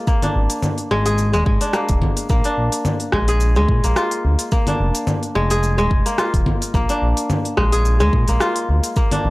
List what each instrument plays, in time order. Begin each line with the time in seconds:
Already playing: kora G#3 F4 G#4
0.07 kora A#3, kick, shaker
0.22 kora D4, open hi-hat, low conga, shaker
0.36 analog synth bass G#1
0.50 open hi-hat, shaker
0.63 low conga, shaker
0.78 open hi-hat, shaker
0.91 analog synth bass G#1, kora G#3
1.06 kora G#4, open hi-hat, shaker
1.18 shaker
1.33 analog synth bass D#1, kora G#3, shaker
1.46 analog synth bass G#1, kora G#3, kick
1.61 kora D4, open hi-hat, shaker
1.73 kora A#3, cross-stick, shaker
1.89 analog synth bass D#1, kick, open hi-hat, shaker
2.02 kick, low conga
2.17 open hi-hat, shaker
2.29 analog synth bass A#1, kora A#3, kick, shaker
2.44 kora D4, open hi-hat, shaker
2.58 analog synth bass A#1
2.72 open hi-hat, shaker
2.85 low conga, shaker
3.00 open hi-hat, shaker
3.12 analog synth bass A#1, kora G#3, kick, cross-stick
3.28 kora G#4, open hi-hat, shaker
3.40 shaker
3.56 analog synth bass D2, kora G#3, shaker
3.69 analog synth bass A#2, kick
3.84 analog synth bass A#1, kora A#3, open hi-hat, shaker
3.96 kora F4, cross-stick, shaker
4.11 open hi-hat, shaker
4.25 analog synth bass D2
4.39 open hi-hat, shaker
4.52 kora A#3, kick, shaker
4.67 kora D4, open hi-hat, low conga, shaker
4.80 analog synth bass F1
4.95 open hi-hat, shaker
5.07 low conga, shaker
5.23 open hi-hat, shaker
5.35 analog synth bass F1, kora G#3
5.50 kora G#4, open hi-hat, shaker
5.63 shaker
5.78 analog synth bass D#1, kora G#3, shaker
5.91 analog synth bass F1, kick
6.06 kora A#3, open hi-hat, shaker
6.18 kora F4, cross-stick, shaker
6.34 analog synth bass D#1, kick, open hi-hat, shaker
6.46 kick, low conga
6.62 open hi-hat, shaker
6.74 analog synth bass A#1, kora A#3, kick, shaker
6.89 kora D4, open hi-hat, shaker
7.02 analog synth bass A#1
7.17 open hi-hat, shaker
7.30 low conga, shaker
7.45 open hi-hat, shaker
7.57 analog synth bass A#1, kora G#3, kick, cross-stick
7.72 kora G#4, open hi-hat, shaker
7.85 shaker
8.00 analog synth bass D2, kora G#3, shaker
8.13 analog synth bass A#2, kick
8.28 analog synth bass A#1, kora A#3, open hi-hat, shaker
8.40 kora F4, cross-stick, shaker
8.56 open hi-hat, shaker
8.69 analog synth bass D2
8.84 open hi-hat, shaker
8.96 kora A#3, kick, shaker
9.12 kora D4, open hi-hat, low conga, shaker
9.24 analog synth bass G#1